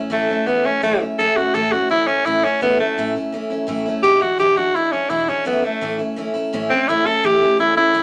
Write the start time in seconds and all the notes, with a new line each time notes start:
Already playing: C#4 E4
0.10 A2 E3 A3 C#4 E4
0.28 A3 C#4 E4
0.46 E3 A3 B3 C#4 E4
0.64 A3 C#4 E4
0.82 A2 E3 A3 C#4 E4
1.00 A3 C#4 E4
1.18 A2 E3 A3 C#4 E4 A4
1.36 A3 C#4 E4 F#4
1.54 A2 E3 A3 C#4 E4 A4
1.71 A3 C#4 E4 F#4
1.90 E3 A3 C#4 E4
2.07 A3 C#4 E4
2.25 A2 E3 A3 C#4 E4
2.43 A3 C#4 E4
2.61 A2 E3 A3 B3 C#4 E4
2.79 A3 C#4 E4
2.97 A2 E3 A3 C#4 E4
3.15 A3 C#4 E4
3.32 E3 A3 C#4 E4
3.50 A3 C#4 E4
3.67 A2 E3 A3 C#4 E4
3.86 A3 C#4 E4
4.03 E2 B2 E3 G#3 D4 E4 G4
4.20 E3 G#3 D4 E4 F#4
4.38 E2 B2 E3 G#3 D4 E4 G4
4.56 E3 G#3 D4 E4 F#4
4.75 E3 G#3 D4 E4
4.92 E3 G#3 C#4 D4 E4
5.10 E2 B2 E3 G#3 D4 E4
5.28 E3 G#3 C#4 D4 E4
5.45 A2 E3 A3 B3 C#4 E4
5.62 A3 C#4 E4
5.81 A2 E3 A3 C#4 E4
5.99 A3 C#4 E4
6.16 E3 A3 C#4 E4
6.34 A3 C#4 E4
6.53 A2 E3 A3 C#4 E4
6.70 A3 C4 C#4 E4
6.88 A2 E3 A3 C#4 E4
7.05 A3 C#4 E4 A4
7.24 A2 E3 A3 C#4 E4 G4
7.41 A3 C#4 E4
7.58 E3 A3 C#4 E4
7.76 A3 C#4 E4
7.94 A2 E3 A3 C#4 E4